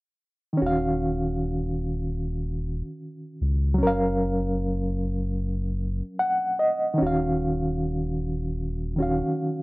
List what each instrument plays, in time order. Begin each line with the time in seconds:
0.53 reed electric piano D#3
0.57 reed electric piano C#4
0.61 sub bass D#1, reed electric piano F#4
0.66 reed electric piano F5
3.41 sub bass C#2
3.74 reed electric piano F#3
3.78 sub bass F#1, reed electric piano C#4
3.83 reed electric piano A#4
3.87 reed electric piano F5
6.19 reed electric piano F#5
6.59 reed electric piano D#5
6.94 reed electric piano D#3
6.98 sub bass D#1, reed electric piano C#4
7.02 reed electric piano F#4
7.07 reed electric piano F5
8.96 reed electric piano D#3 C#4
9.00 reed electric piano F#4 F5